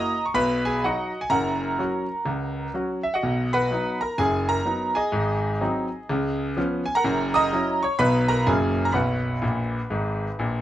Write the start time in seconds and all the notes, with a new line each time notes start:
Already playing: A#3 E4 F#4 D#5 A#5 D#6
0.26 C#6
0.34 B1 B2 B4 B5
0.65 G#4 G#5
0.84 F#3 D#4 F#4 D#5 F#5
1.21 G#5
1.30 F#1 F#2 A#4 F#5 A#5
1.79 F#3 C#4 F#4
2.25 C#2 C#3
2.74 F#3 C#4 F#4
3.03 E5
3.14 F#4 D#5 F#5
3.23 B1 B2
3.53 B4 F#5 B5
3.71 F#3 B3 D#4
4.01 A#4 A#5
4.18 F#1 F#2 G#4 G#5
4.49 A#4 A#5
4.65 F#3 B3 D#4
4.95 G#4 D#5 G#5
5.12 G#1 G#2
5.61 F#3 C4 D#4
6.09 C#2 C#3
6.57 F3 B3 C#4
6.86 G#5
6.95 A#4 F#5 A#5
7.04 F#1 F#2
7.34 D#5 A#5 D#6
7.53 F#3 C#4 E4
7.83 C#5 C#6
7.99 B1 B2 F#3 B3 D#4 B4 B5
8.28 A#4 A#5
8.47 F#1 F#2 F#3 A#3 C#4 G#4 G#5
8.85 A#5
8.92 B1 B2 B4 F#5 B5
9.42 A#1 A#2
9.90 G#1 G#2
10.39 A#1 A#2